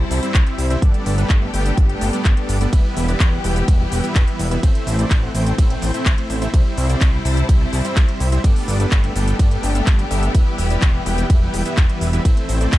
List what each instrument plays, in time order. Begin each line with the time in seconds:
Already playing: string section C3 G3 E4
0.00 supersaw synth G3 C4 E4 C5 A5
0.11 analog synth bass C2, open hi-hat, cabasa
0.23 supersaw synth G3 C4 E4 C5 E5, closed hi-hat, cabasa
0.34 analog synth bass C2, kick, clap, closed hi-hat, cabasa
0.47 supersaw synth G3 C4 E4 C5 E5, closed hi-hat
0.58 analog synth bass C2, open hi-hat, cabasa
0.70 supersaw synth G3 C4 E4 C5 E5, closed hi-hat, cabasa
0.82 analog synth bass G1, supersaw synth G3 B3 D4 A4 D5, string section A3 B3 G4, kick, closed hi-hat, cabasa
0.94 closed hi-hat
1.06 analog synth bass G1, open hi-hat, cabasa
1.18 supersaw synth G3 B3 D4 A4 B4, closed hi-hat, cabasa
1.30 analog synth bass G1, kick, clap, closed hi-hat, cabasa
1.42 supersaw synth G3 B3 D4 A4 E5
1.54 analog synth bass G1, supersaw synth G3 B3 D4 A4 G5, open hi-hat, cabasa
1.66 closed hi-hat, cabasa
1.77 analog synth bass G1, supersaw synth G3 B3 D4 A4 D5, kick, closed hi-hat, cabasa
1.89 supersaw synth G3 B3 D4 A4 G5, closed hi-hat
2.01 analog synth bass G1, open hi-hat, cabasa
2.13 supersaw synth G3 B3 D4 A4 D5, closed hi-hat, cabasa
2.25 analog synth bass G1, kick, clap, closed hi-hat, cabasa
2.37 supersaw synth G3 B3 D4 A4 D5, closed hi-hat
2.49 analog synth bass G1, open hi-hat, cabasa
2.61 supersaw synth G3 B3 D4 A4 D5, closed hi-hat, cabasa
2.73 analog synth bass E1, string section E3 G4, supersaw synth G3 B3 E4 B4 E5, kick, closed hi-hat, ride, cabasa
2.97 analog synth bass E1, open hi-hat, cabasa
3.08 supersaw synth G3 B3 E4 B4 D5, closed hi-hat, cabasa
3.20 analog synth bass E1, kick, clap, closed hi-hat, ride, cabasa
3.32 supersaw synth G3 B3 E4 B4 F#5
3.44 analog synth bass E1, supersaw synth G3 B3 E4 B4 G5, open hi-hat, cabasa
3.56 closed hi-hat, cabasa
3.68 analog synth bass E1, supersaw synth G3 B3 E4 B4 E5, kick, closed hi-hat, ride, cabasa
3.80 supersaw synth G3 B3 E4 B4 G5
3.92 analog synth bass E1, open hi-hat, cabasa
4.04 supersaw synth G3 B3 E4 B4 E5, closed hi-hat, cabasa
4.15 analog synth bass E1, kick, clap, closed hi-hat, ride, cabasa
4.27 supersaw synth G3 B3 E4 B4 E5, closed hi-hat
4.39 analog synth bass E1, open hi-hat, cabasa
4.51 supersaw synth G3 B3 E4 B4 E5, closed hi-hat, cabasa
4.63 analog synth bass A1, supersaw synth A3 C4 E4 C5 E5, string section A3 C4, kick, closed hi-hat, ride, cabasa
4.75 closed hi-hat
4.87 analog synth bass A1, open hi-hat, cabasa
4.99 supersaw synth A3 C4 E4 C5 D5, closed hi-hat, cabasa
5.11 analog synth bass A1, kick, clap, closed hi-hat, ride, cabasa
5.23 supersaw synth A3 C4 E4 C5 F#5
5.35 analog synth bass A1, supersaw synth A3 C4 E4 C5 G5, open hi-hat, cabasa
5.47 closed hi-hat, cabasa
5.58 analog synth bass A1, supersaw synth A3 C4 E4 C5 E5, kick, closed hi-hat, ride, cabasa
5.70 supersaw synth A3 C4 E4 C5 G5, closed hi-hat
5.82 analog synth bass A1, open hi-hat, cabasa
5.94 supersaw synth A3 C4 E4 C5 E5, closed hi-hat, cabasa
6.06 analog synth bass A1, kick, clap, closed hi-hat, ride, cabasa
6.18 supersaw synth A3 C4 E4 C5 E5, closed hi-hat
6.30 analog synth bass A1, open hi-hat, cabasa
6.42 supersaw synth A3 C4 E4 C5 E5, closed hi-hat, cabasa
6.54 analog synth bass C2, string section C3 G3 E4, supersaw synth G3 C4 E4 C5 E5, kick, closed hi-hat, ride, cabasa
6.78 analog synth bass C2, open hi-hat, cabasa
6.89 supersaw synth G3 C4 E4 C5 D5, closed hi-hat, cabasa
7.01 analog synth bass C2, kick, clap, closed hi-hat, ride, cabasa
7.13 supersaw synth G3 C4 E4 C5 G5
7.25 analog synth bass C2, supersaw synth G3 C4 E4 C5 A5, open hi-hat, cabasa
7.37 closed hi-hat, cabasa
7.49 analog synth bass C2, supersaw synth G3 C4 E4 C5 E5, kick, closed hi-hat, ride, cabasa
7.61 supersaw synth G3 C4 E4 C5 A5
7.73 analog synth bass C2, open hi-hat, cabasa
7.85 supersaw synth G3 C4 E4 C5 E5, closed hi-hat, cabasa
7.96 analog synth bass C2, kick, clap, closed hi-hat, ride, cabasa
8.08 supersaw synth G3 C4 E4 C5 E5, closed hi-hat
8.20 analog synth bass C2, open hi-hat, cabasa
8.32 supersaw synth G3 C4 E4 C5 E5, closed hi-hat, cabasa
8.44 analog synth bass G1, supersaw synth G3 B3 D4 A4 D5, string section A3 B3 G4, kick, closed hi-hat, ride, cabasa
8.56 open hi-hat
8.68 analog synth bass G1, open hi-hat, cabasa
8.80 supersaw synth G3 B3 D4 A4 B4, closed hi-hat, cabasa
8.92 analog synth bass G1, kick, clap, closed hi-hat, ride, cabasa
9.04 supersaw synth G3 B3 D4 A4 E5, closed hi-hat
9.16 analog synth bass G1, supersaw synth G3 B3 D4 A4 G5, open hi-hat, cabasa
9.28 closed hi-hat, cabasa
9.39 analog synth bass G1, supersaw synth G3 B3 D4 A4 D5, kick, closed hi-hat, ride, cabasa
9.51 supersaw synth G3 B3 D4 A4 G5, closed hi-hat
9.63 analog synth bass G1, open hi-hat, cabasa
9.75 supersaw synth G3 B3 D4 A4 E5, closed hi-hat, cabasa
9.87 analog synth bass G1, kick, clap, closed hi-hat, ride, cabasa
9.99 supersaw synth G3 B3 D4 A4 G5, closed hi-hat
10.11 analog synth bass G1, supersaw synth G3 B3 D4 A4 E5, open hi-hat, cabasa
10.23 closed hi-hat, cabasa
10.35 analog synth bass E1, string section E3, supersaw synth G3 B3 E4 B4 E5, kick, closed hi-hat, ride, cabasa
10.58 analog synth bass E1, open hi-hat, cabasa
10.70 supersaw synth G3 B3 E4 B4 D5, closed hi-hat, cabasa
10.82 analog synth bass E1, kick, clap, closed hi-hat, ride, cabasa
10.94 supersaw synth G3 B3 E4 B4 F#5
11.06 analog synth bass E1, supersaw synth G3 B3 E4 B4 G5, open hi-hat, cabasa
11.18 closed hi-hat, cabasa
11.30 analog synth bass E1, supersaw synth G3 B3 E4 B4 E5, kick, closed hi-hat, ride, cabasa
11.42 supersaw synth G3 B3 E4 B4 G5
11.54 analog synth bass E1, open hi-hat, cabasa
11.66 supersaw synth G3 B3 E4 B4 E5, closed hi-hat, cabasa
11.77 analog synth bass E1, kick, clap, closed hi-hat, ride, cabasa
11.89 supersaw synth G3 B3 E4 B4 E5, closed hi-hat
12.01 analog synth bass E1, open hi-hat, cabasa
12.13 supersaw synth G3 B3 E4 B4 E5, closed hi-hat, cabasa
12.25 analog synth bass A1, supersaw synth A3 C4 E4 C5 E5, string section A3 C4, kick, closed hi-hat, ride, cabasa
12.37 closed hi-hat
12.49 analog synth bass A1, open hi-hat, cabasa
12.61 supersaw synth A3 C4 E4 C5 D5, closed hi-hat, cabasa
12.72 analog synth bass A1, kick, clap, closed hi-hat, ride, cabasa